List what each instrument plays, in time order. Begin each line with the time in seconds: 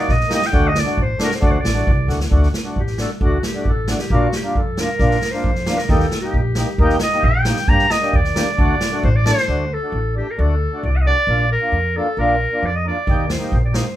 Already playing: accordion A#3 D#4
0.00 accordion F#4, clarinet D5
0.08 upright bass A#1, clarinet D#5, kick, snare
0.20 snare
0.28 accordion A#3 D#4 G4, snare
0.34 clarinet D#5
0.42 clarinet G5, snare
0.52 upright bass D2, accordion A3 D4 F#4, kick
0.67 clarinet D#5
0.75 clarinet D5, snare
0.84 accordion A3 D4 F#4, snare
0.97 upright bass A1, kick
1.02 clarinet C5
1.19 accordion A3 D4 F#4, snare
1.23 clarinet A#4
1.31 clarinet C5, snare
1.40 upright bass D2, accordion A3 D4 F#4, kick
1.46 clarinet D5
1.51 clarinet C5
1.60 clarinet D5
1.64 upright bass A1, snare
1.74 accordion A3 D4 F#4
1.87 upright bass C2, kick
2.07 upright bass D2, accordion A3 D4 F#4, snare
2.21 snare
2.31 upright bass D2, accordion A3 D4 F#4, kick
2.43 snare
2.54 snare
2.64 accordion A3 D4 F#4
2.76 upright bass A1, clarinet G4, kick
2.87 snare
2.98 accordion A3 D4 F#4, clarinet A4, snare
3.21 upright bass D2, accordion A3 D4 F#4, clarinet F#4, kick
3.43 clarinet G4, snare
3.53 accordion A3 D4 F#4
3.65 upright bass A1, clarinet A4, kick
3.87 accordion A3 D4 F#4, snare
3.93 clarinet A4
3.99 clarinet G4, snare
4.10 upright bass A#1, accordion A#3 D4 F4, clarinet F#4, kick
4.32 clarinet G4, snare
4.44 accordion A#3 D4 F4
4.55 upright bass F2, clarinet A4, kick
4.77 accordion A#3 D4 F4, snare
4.81 clarinet A#4
4.99 upright bass A#1, accordion A#3 D4 F4, kick, snare
5.11 snare
5.21 snare
5.31 accordion A#3 D4 F4, clarinet C5, snare
5.44 upright bass F2, kick
5.55 snare
5.66 accordion A#3 D4 F4, snare
5.77 clarinet A#4, snare
5.89 upright bass D#2, accordion A#3 D#4 G4, clarinet A4, kick, snare
6.00 snare
6.11 snare
6.21 accordion A#3 D#4, clarinet G4
6.25 accordion G4
6.34 upright bass A#1, kick
6.55 accordion A#3 D#4 G4, snare
6.78 upright bass D#2, accordion A#3 D#4 G4, kick
6.90 snare
6.99 clarinet D#5, snare
7.12 accordion A#3 D#4 G4, snare
7.23 upright bass A#1, clarinet G5, kick
7.45 accordion A#3 D#4 G4, snare
7.56 snare
7.68 upright bass G2, accordion A#3 D4 G4, clarinet A#5, kick
7.79 snare
7.90 clarinet D#5, snare
8.01 accordion A#3 D4 G4, snare
8.13 upright bass D#2, clarinet D5, kick
8.24 snare
8.35 accordion A#3 D4 G4, snare
8.57 upright bass D2, accordion A3 D4 F#4, kick
8.81 snare
8.92 accordion A3 D4 F#4
9.03 upright bass A1, clarinet C5, kick
9.16 clarinet D5
9.25 accordion A3 D4 A4, clarinet C5, snare
9.38 snare
9.47 upright bass D2, accordion A3 D4 F#4
9.73 clarinet A4
9.82 accordion A3 D4 F#4
9.92 upright bass A1
10.15 accordion A3 D4 A4, clarinet G4
10.31 clarinet A#4
10.37 upright bass D2, accordion A3 D4 F#4, clarinet A4
10.72 accordion A3 D4 F#4
10.83 upright bass C2, clarinet D5
10.96 clarinet F#5
11.01 clarinet D#5
11.06 accordion A3 D4 F#4, clarinet D5
11.27 upright bass A#1, accordion A#3 D4 F4
11.52 clarinet A#4
11.61 accordion A#3 D4 F4
11.72 upright bass F2
11.95 accordion A#3 D4 F4, clarinet A4
12.17 upright bass A#1, accordion A#3 D4 F4, clarinet A#4
12.52 accordion A#3 D4 F4
12.63 upright bass F2, clarinet D5
12.76 clarinet D#5
12.85 accordion A#3 D4 F4, clarinet D5
13.07 upright bass D#2, accordion A#3 D#4 G4, kick
13.30 clarinet C5, snare
13.39 accordion A#3 D#4 G4, snare
13.52 upright bass A#1, clarinet C5, kick
13.65 clarinet D5
13.72 accordion A#3 D#4 G4, clarinet C5, snare